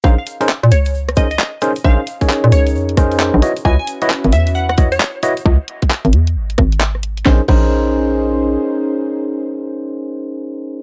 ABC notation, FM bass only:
X:1
M:4/4
L:1/16
Q:"Swing 16ths" 1/4=133
K:Bbm
V:1 name="FM bass" clef=bass
B,,, z4 B,, D,,6 z4 | B,,, z4 B,, D,,2 F,,4- F,, B,,, z2 | D,, z4 A,,, _F,,6 z4 | D,, z4 A,,, _F,,2 A,,,2 A,,,6 |
B,,, z B,,,8- B,,,2 z4 | z16 |]